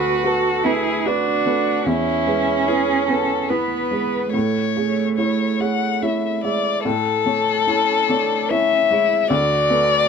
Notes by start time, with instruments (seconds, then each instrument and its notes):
Already playing: felt piano D2 A3 B4, cello F#4, violin B4
0.23 felt piano F#4 B4, violin A4
0.64 felt piano A3 B4, cello E4, violin G#4
1.05 cello D4, felt piano F#4 B4, violin F#4
1.46 felt piano A3 B4
1.85 felt piano E2, cello C#4, violin E4
2.26 felt piano G#3 B4
2.67 felt piano E4 B4, violin G#4
3.08 felt piano B3 B4, violin A4
3.49 cello B3, felt piano E4 B4, violin B4
3.91 felt piano G#3 B4
4.33 felt piano A2, cello A3, violin C#5
4.77 felt piano G#4 C#5
5.17 felt piano E4 C#5, violin C#5
5.60 felt piano G#4 C#5, violin F#5
6.02 felt piano E4 C#5, violin E5
6.44 felt piano G#3 E5, violin D5
6.84 felt piano A2, violin A4
7.26 felt piano A3 C#5
7.66 cello C#4, felt piano E4 C#5
8.09 felt piano A3 C#5, cello D4
8.50 cello C#4, felt piano E4 C#5, violin E5
8.91 felt piano G#3 C#5, cello E4
9.30 felt piano D2, cello F#4, violin D5
9.70 felt piano A3 B4